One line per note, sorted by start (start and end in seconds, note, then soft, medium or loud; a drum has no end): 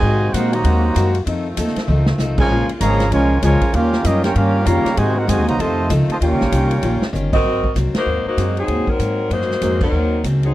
0.00 0.32 G#2 loud
0.00 0.31 C3 medium
0.00 1.25 C3 medium
0.00 0.31 D#3 medium
0.00 0.31 G#3 medium
0.00 0.23 G#3 medium
0.00 1.25 A#3 medium
0.00 0.31 F#4 medium
0.00 1.25 F#4 medium
0.00 0.31 C5 medium
0.00 0.31 D#5 medium
0.00 0.31 G#5 loud
0.04 0.23 C4 soft
0.04 0.24 F#4 medium
0.04 0.24 A#4 medium
0.34 0.63 A#2 loud
0.34 0.54 G#3 medium
0.34 0.54 C4 medium
0.34 0.53 C4 medium
0.34 0.53 D#4 medium
0.34 0.53 F#4 medium
0.34 0.54 F#4 medium
0.34 0.53 A#4 medium
0.34 0.55 A#4 medium
0.34 0.53 C5 medium
0.34 0.52 F#5 loud
0.34 kick soft
0.34 hi-hat pedal medium
0.34 ride medium
0.53 1.15 D#3 medium
0.53 1.14 F#3 medium
0.53 1.15 A#3 medium
0.53 1.15 F#4 medium
0.53 1.15 C5 medium
0.53 1.15 D#5 medium
0.53 1.15 A#5 loud
0.53 ride medium
0.64 0.94 D#2 loud
0.64 0.84 G#3 medium
0.64 0.85 C4 medium
0.64 0.85 F#4 medium
0.64 0.85 A#4 medium
0.64 kick soft
0.64 ride medium
0.94 1.25 F#2 loud
0.94 1.15 G#3 medium
0.94 1.16 C4 medium
0.94 1.16 F#4 medium
0.94 1.16 A#4 medium
0.94 kick soft
0.94 hi-hat pedal medium
0.94 ride medium
1.15 ride medium
1.24 1.56 F2 medium
1.24 2.48 D#3 medium
1.24 1.46 F3 medium
1.24 2.48 A3 medium
1.24 2.48 C4 medium
1.24 1.47 C4 medium
1.24 1.47 D#4 medium
1.24 3.70 F4 medium
1.24 1.47 A4 medium
1.24 kick soft
1.24 ride medium
1.57 1.75 D#2 medium
1.57 1.77 F3 medium
1.57 1.77 C4 medium
1.57 1.78 D#4 medium
1.57 1.78 A4 medium
1.57 kick soft
1.57 hi-hat pedal medium
1.57 ride medium
1.67 snare soft
1.76 muted upright bass stroke soft
1.76 snare medium
1.76 ride medium
1.87 2.17 C#2 medium
1.87 2.08 F3 medium
1.87 2.09 C4 medium
1.87 2.09 D#4 medium
1.87 2.09 A4 medium
1.87 mid tom medium
2.06 snare medium
2.18 2.48 C2 loud
2.18 2.39 F3 medium
2.18 2.39 C4 medium
2.18 2.39 D#4 medium
2.18 2.40 A4 medium
2.18 snare medium
2.18 hi-hat pedal medium
2.38 2.67 C#3 medium
2.38 2.67 F3 medium
2.38 2.67 G#3 medium
2.38 2.68 F4 medium
2.38 2.67 A#4 medium
2.38 2.67 C#5 medium
2.38 2.68 G#5 loud
2.38 kick medium
2.38 crash medium
2.49 2.67 A#1 loud
2.49 2.70 A#2 soft
2.49 3.72 G#3 medium
2.49 2.70 G#3 soft
2.49 3.72 A#3 medium
2.49 3.72 C#4 medium
2.49 2.71 C#4 medium
2.49 2.71 F4 medium
2.68 muted upright bass stroke soft
2.68 ride medium
2.80 3.11 G#1 loud
2.80 3.01 A#2 medium
2.80 3.09 C#3 loud
2.80 3.09 F3 loud
2.80 3.01 G#3 medium
2.80 3.09 A#3 medium
2.80 3.01 C#4 medium
2.80 3.02 F4 medium
2.80 3.10 G#4 loud
2.80 3.09 C#5 medium
2.80 3.10 F5 loud
2.80 3.10 A#5 loud
2.80 kick soft
2.80 hi-hat pedal medium
2.80 ride medium
3.00 snare soft
3.00 ride medium
3.11 3.41 C2 medium
3.11 3.31 A#2 soft
3.11 3.40 F3 medium
3.11 3.40 G#3 medium
3.11 3.32 G#3 medium
3.11 3.40 C#4 medium
3.11 3.32 C#4 medium
3.11 3.33 F4 medium
3.11 3.41 F4 medium
3.11 3.41 A#4 medium
3.11 3.41 C#5 medium
3.11 3.41 G#5 loud
3.11 kick soft
3.11 ride medium
3.41 3.60 C#2 loud
3.41 3.62 A#2 medium
3.41 3.71 C#3 medium
3.41 3.71 F3 medium
3.41 3.71 G#3 medium
3.41 3.63 G#3 medium
3.41 3.63 C#4 medium
3.41 3.63 F4 medium
3.41 3.72 F4 medium
3.41 3.72 A#4 medium
3.41 3.73 C#5 medium
3.41 3.72 G#5 loud
3.41 kick soft
3.41 hi-hat pedal medium
3.41 ride medium
3.61 kick medium
3.61 ride medium
3.73 4.03 D#2 medium
3.73 3.94 D#3 medium
3.73 4.96 D#3 medium
3.73 3.94 G3 medium
3.73 4.03 A#3 medium
3.73 4.04 C#4 medium
3.73 4.96 C#4 medium
3.73 4.04 C#4 medium
3.73 3.95 C#4 medium
3.73 4.04 F4 loud
3.73 4.96 F4 medium
3.73 3.95 F4 medium
3.73 4.05 G4 medium
3.73 4.97 G4 medium
3.73 4.05 A#4 medium
3.73 4.05 F5 loud
3.73 kick soft
3.73 ride medium
3.93 snare soft
4.04 4.34 F#2 loud
4.04 4.25 D#3 medium
4.04 4.23 G3 medium
4.04 4.25 G3 medium
4.04 4.22 A#3 medium
4.04 4.24 C#4 medium
4.04 4.25 C#4 medium
4.04 4.23 D#4 medium
4.04 4.25 F4 medium
4.04 4.24 G4 medium
4.04 4.24 A#4 medium
4.04 4.24 D#5 loud
4.04 kick soft
4.04 hi-hat pedal medium
4.04 ride medium
4.23 4.34 A#3 medium
4.23 4.34 C#4 medium
4.23 4.35 F4 medium
4.23 4.34 G4 medium
4.23 4.35 A#4 medium
4.23 4.35 C#5 medium
4.23 4.35 G5 loud
4.23 snare medium
4.23 ride medium
4.34 4.65 G2 medium
4.34 4.55 D#3 medium
4.34 4.56 G3 medium
4.34 4.65 A#3 medium
4.34 4.66 C#4 medium
4.34 4.56 C#4 medium
4.34 4.66 F4 medium
4.34 4.56 F4 medium
4.34 4.66 G4 medium
4.34 4.67 A#4 medium
4.34 4.65 F5 loud
4.34 kick soft
4.34 ride medium
4.65 4.84 F2 loud
4.65 4.97 C#3 loud
4.65 4.86 D#3 medium
4.65 4.97 G3 medium
4.65 4.87 G3 medium
4.65 4.97 A#3 medium
4.65 4.87 C#4 medium
4.65 4.87 F4 medium
4.65 4.97 G4 medium
4.65 4.97 C#5 loud
4.65 4.97 F5 medium
4.65 4.97 A#5 loud
4.65 kick soft
4.65 hi-hat pedal medium
4.65 ride medium
4.85 muted upright bass stroke soft
4.85 snare soft
4.85 ride medium
4.97 5.27 G#2 loud
4.97 5.16 C3 medium
4.97 5.58 C3 medium
4.97 5.16 D#3 medium
4.97 5.17 G#3 medium
4.97 5.16 G#3 medium
4.97 5.59 G#3 medium
4.97 5.58 A#3 medium
4.97 5.18 C4 medium
4.97 5.58 F#4 medium
4.97 5.17 F#4 medium
4.97 5.18 F#4 medium
4.97 5.19 A#4 medium
4.97 5.17 C5 medium
4.97 5.17 D#5 medium
4.97 5.17 G#5 loud
4.97 kick soft
4.97 ride medium
5.16 5.28 C4 medium
5.16 5.28 D#4 medium
5.16 5.29 D#4 medium
5.16 5.28 F#4 medium
5.16 5.29 A#4 medium
5.16 5.28 C5 medium
5.16 5.29 F#5 medium
5.27 5.38 F#2 loud
5.27 5.47 C3 medium
5.27 5.45 D#3 medium
5.27 5.47 G#3 medium
5.27 5.48 G#3 medium
5.27 5.48 C4 medium
5.27 5.48 F#4 medium
5.27 5.46 F#4 medium
5.27 5.49 A#4 medium
5.27 5.47 C5 medium
5.27 5.47 D#5 medium
5.27 5.47 G#5 loud
5.27 kick soft
5.27 hi-hat pedal medium
5.27 ride medium
5.38 5.48 D#2 medium
5.46 5.58 C2 medium
5.46 5.58 D#3 medium
5.46 5.58 F#3 medium
5.46 5.58 A#3 medium
5.46 5.58 F#4 medium
5.46 5.58 C5 medium
5.46 5.58 D#5 medium
5.46 5.59 A#5 loud
5.46 ride medium
5.58 5.89 F2 medium
5.58 5.90 C3 medium
5.58 7.43 D#3 medium
5.58 5.90 D#3 medium
5.58 5.79 F3 soft
5.58 6.20 A3 medium
5.58 5.90 A3 medium
5.58 6.20 C4 medium
5.58 5.79 C4 medium
5.58 5.79 D#4 medium
5.58 7.42 F4 medium
5.58 5.91 F4 medium
5.58 5.80 A4 medium
5.58 5.90 C5 medium
5.58 5.90 D#5 medium
5.58 5.90 A5 loud
5.58 kick soft
5.58 ride medium
5.89 6.08 C#2 loud
5.89 6.10 F3 medium
5.89 6.10 C4 medium
5.89 6.10 D#4 medium
5.89 6.11 A4 medium
5.89 kick soft
5.89 hi-hat pedal medium
5.89 ride medium
6.09 6.14 C3 medium
6.09 6.15 D#3 medium
6.09 6.15 A3 medium
6.09 6.17 F4 medium
6.09 6.17 C5 medium
6.09 6.16 D#5 medium
6.09 6.17 A5 medium
6.09 muted upright bass stroke soft
6.09 ride soft
6.20 6.33 D#2 medium
6.20 6.41 D#3 medium
6.20 7.43 G3 medium
6.20 7.10 A#3 medium
6.20 7.43 C#4 medium
6.20 6.41 C#4 soft
6.20 7.10 C#4 medium
6.20 6.42 F4 medium
6.20 7.11 F4 medium
6.20 7.10 G4 medium
6.20 6.42 G4 medium
6.20 7.11 A#4 medium
6.20 7.11 C#5 medium
6.20 7.11 G5 medium
6.20 kick soft
6.20 ride medium
6.31 6.41 C#2 medium
6.41 6.51 A#1 medium
6.41 snare soft
6.51 6.82 C2 loud
6.51 6.71 D#3 medium
6.51 6.72 C#4 medium
6.51 6.72 F4 medium
6.51 6.72 G4 medium
6.51 kick soft
6.51 hi-hat pedal medium
6.51 ride medium
6.71 ride medium
6.82 7.00 A#1 medium
6.82 7.02 D#3 medium
6.82 7.03 C#4 medium
6.82 7.03 F4 medium
6.82 7.04 G4 medium
6.82 kick soft
6.82 ride medium
7.02 muted upright bass stroke soft
7.02 snare medium
7.13 7.43 G1 loud
7.13 7.33 D#3 medium
7.13 7.34 C#4 medium
7.13 7.34 F4 medium
7.13 7.34 G4 medium
7.13 hi-hat pedal medium
7.33 7.73 C4 loud
7.33 7.73 F#4 loud
7.33 7.73 A#4 loud
7.33 7.73 D#5 loud
7.33 kick medium
7.33 crash medium
7.43 7.74 G#1 medium
7.43 7.64 G#2 soft
7.43 7.65 F#3 soft
7.43 7.65 A#3 soft
7.43 7.65 C4 soft
7.64 kick medium
7.74 7.93 C2 medium
7.74 7.95 G#2 medium
7.74 7.96 F#3 medium
7.74 7.96 A#3 medium
7.74 7.96 C4 medium
7.74 kick soft
7.74 snare soft
7.74 hi-hat pedal medium
7.74 ride medium
7.94 8.25 A#3 medium
7.94 8.25 D#4 medium
7.94 8.25 F#4 medium
7.94 8.25 C5 medium
7.94 snare medium
7.94 ride medium
8.06 8.24 D#2 medium
8.06 8.26 G#2 soft
8.06 8.27 F#3 soft
8.06 8.27 A#3 soft
8.06 8.27 C4 medium
8.25 8.56 A#3 medium
8.25 8.56 D#4 medium
8.25 8.56 F#4 medium
8.25 8.56 C5 medium
8.25 muted upright bass stroke soft
8.37 8.67 F#2 medium
8.37 8.57 G#2 medium
8.37 8.55 F#3 medium
8.37 8.58 F#3 medium
8.37 8.55 G#3 soft
8.37 8.55 A#3 soft
8.37 8.58 A#3 medium
8.37 8.55 C4 medium
8.37 8.58 C4 medium
8.37 8.55 D#4 medium
8.37 kick soft
8.37 hi-hat pedal soft
8.37 ride medium
8.57 8.89 F#3 medium
8.57 8.89 C4 medium
8.57 8.89 D#4 medium
8.57 8.89 G#4 medium
8.57 ride soft
8.68 8.86 D#2 medium
8.68 8.88 G#2 soft
8.68 8.89 F#3 soft
8.68 8.89 A#3 soft
8.68 8.89 C4 soft
8.68 kick soft
8.68 ride medium
8.87 9.32 F#3 medium
8.87 9.32 C4 medium
8.87 9.32 D#4 medium
8.87 9.32 A#4 medium
8.87 muted upright bass stroke soft
8.87 kick medium
8.99 9.19 G#2 medium
8.99 9.29 G#2 medium
8.99 9.20 F#3 soft
8.99 9.20 A#3 medium
8.99 9.20 C4 medium
8.99 kick soft
8.99 hi-hat pedal medium
8.99 ride medium
9.29 9.60 F#2 medium
9.29 9.50 G#2 soft
9.29 9.51 F#3 soft
9.29 9.51 A#3 soft
9.29 9.82 A#3 medium
9.29 9.51 C4 medium
9.29 9.82 D#4 medium
9.29 9.82 F#4 medium
9.29 9.82 C5 medium
9.29 kick soft
9.29 ride medium
9.41 snare soft
9.51 snare soft
9.61 9.92 F2 medium
9.61 9.82 G#2 medium
9.61 9.82 F#3 medium
9.61 9.79 F#3 medium
9.61 9.79 G#3 medium
9.61 9.82 A#3 medium
9.61 9.79 A#3 medium
9.61 9.79 C4 medium
9.61 9.83 C4 medium
9.61 9.80 D#4 medium
9.61 kick soft
9.61 hi-hat pedal medium
9.61 ride medium
9.81 10.22 F#3 medium
9.81 10.22 C4 medium
9.81 10.22 D#4 medium
9.81 10.22 A#4 medium
9.81 kick medium
9.81 crash medium
9.92 10.22 D#2 medium
9.92 10.12 G#2 soft
9.92 10.13 F#3 soft
9.92 10.13 A#3 soft
9.92 10.14 C4 medium
10.24 10.54 C#2 medium
10.24 10.44 G#2 medium
10.24 10.44 F#3 medium
10.24 10.45 A#3 medium
10.24 10.45 C4 medium
10.24 kick soft
10.24 hi-hat pedal medium
10.24 ride medium
10.43 10.54 F#3 medium
10.43 10.54 C4 medium
10.43 10.54 D#4 medium
10.43 10.54 G#4 medium
10.43 ride soft